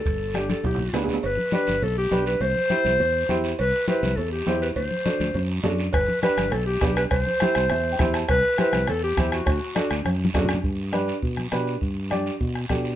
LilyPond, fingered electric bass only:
\new Staff \with { instrumentName = "Fingered electric bass" } { \clef bass \time 4/4 \key g \major \tempo 4 = 204 g,,2 b,,4 d,4 | g,,8 r4 g,,8 b,,4 b,,4 | c,8 r4 c,8 e,4 e,4 | c,8 r4 c,8 e,4 e,4 |
d,8 r4 d,8 fis,4 fis,4 | g,,8 r4 g,,8 b,,4 b,,4 | c,8 r4 c,8 e,4 e,4 | c,8 r4 c,8 e,4 e,4 |
d,8 r4 d,8 fis,4 fis,4 | g,2 b,4 b,4 | g,2 b,4 b,4 | }